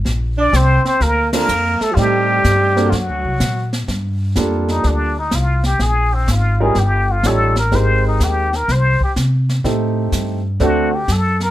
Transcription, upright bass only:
X:1
M:4/4
L:1/8
Q:"Swing" 1/4=125
K:Gm
V:1 name="Upright bass" clef=bass
B,,,2 C,, z D,,2 F,, z | A,,2 G,,2 (3^F,, D,, C,, B,,2 | G,,2 F,,2 D,,2 C,,2 | B,,,2 _A,,,2 G,,,2 =A,,,2 |
_A,,,2 E,,2 C,, z C,2 | A,,2 G,,2 D,,2 ^F,,2 |]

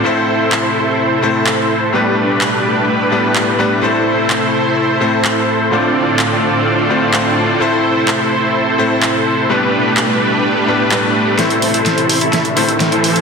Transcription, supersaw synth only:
X:1
M:4/4
L:1/16
Q:1/4=127
K:Am
V:1 name="Supersaw synth"
[EAc]16 | [A,DGB]16 | [EAc]16 | [A,,CDFAd]16 |
[EAc]16 | [A,DGB]16 | [EAc]3 [EAc]4 [EAe]2 z [EAc] z2 [EAc]3 |]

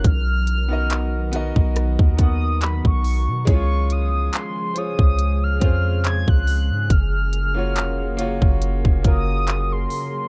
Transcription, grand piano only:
X:1
M:4/4
L:1/16
Q:"Swing 16ths" 1/4=70
K:Db
V:1 name="Grand piano"
z3 [_CEGBe]2 z [CEGBe]3 z [CEGBg]4 z2 | [A,D_F=FAd]4 z2 [DFAcd]3 z [CDFAc]6 | z3 [B,DFGd]2 z [B,DFGd]3 z [B,DFGB]4 z2 |]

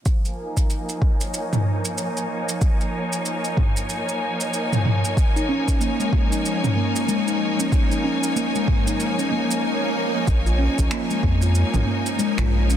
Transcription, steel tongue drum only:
X:1
M:4/4
L:1/16
Q:"Swing 16ths" 1/4=94
K:Bbm
V:1 name="Steel tongue drum"
z16 | z16 | z E D2 B, A,2 E z D B,2 A, E2 D | z E D2 B, A,2 E z D B, z4 z |
z F D2 B, A,2 F z D B,2 A, F2 D |]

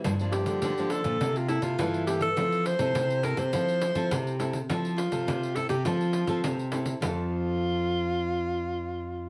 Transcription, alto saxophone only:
X:1
M:4/4
L:1/16
Q:1/4=103
K:F
V:1 name="Alto saxophone"
z2 G4 A3 F E F3 G A- | A2 c4 B c6- c z2 | z2 F4 A G F6 z2 | F16 |]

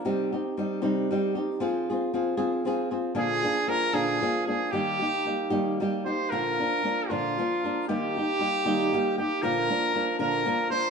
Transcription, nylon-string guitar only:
X:1
M:6/8
L:1/8
Q:3/8=77
K:Eb
V:1 name="Nylon-string guitar"
[C,G,CEG] [CEG] [G,CEG] [C,G,CEG] [G,CEG] [CEG] | [F,CFA] [CFA] [F,CFA] [F,CFA] [F,CFA] [CFA] | [B,,D,F,B,DA] [F,B,DA] [F,B,DA] [B,,D,F,B,DA] [F,B,DA] [F,B,DA] | [E,G,B,EG] [B,EG] [G,B,EG] [E,G,B,EG] [G,B,EG] [B,EG] |
[K:Bb] [B,,D,F,B,DB] [F,B,DB] [F,B,DB] [B,,D,F,B,DB] [F,B,DB] [F,B,DB] | [E,G,B,EG] [B,EG] [G,B,EG] [E,G,B,EG] [G,B,EG] [B,EG] | [B,,D,F,B,DB] [F,B,DB] [F,B,DB] [B,,D,F,B,DB] [F,B,DB] [F,B,DB] |]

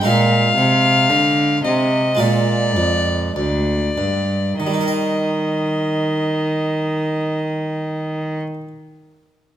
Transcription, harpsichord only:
X:1
M:4/4
L:1/8
Q:1/4=48
K:Eb
V:1 name="Harpsichord"
[A,EB]4 [A,FB]4 | [E,G,EBe]8 |]
V:2 name="Harpsichord" clef=bass
B,, C, D, C, B,, F,, D,, G,, | z8 |]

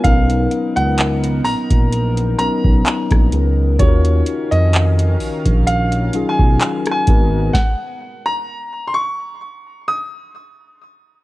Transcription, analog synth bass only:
X:1
M:4/4
L:1/16
Q:"Swing 16ths" 1/4=64
K:Abdor
V:1 name="Analog synth bass" clef=bass
=B,,,2 z ^C,,3 ^A,,, A,,,3 B,,, B,,, z A,,, C,,2 | E,,2 z F,,3 B,,, B,,,3 C,, C,, z2 A,,,2 | z16 |]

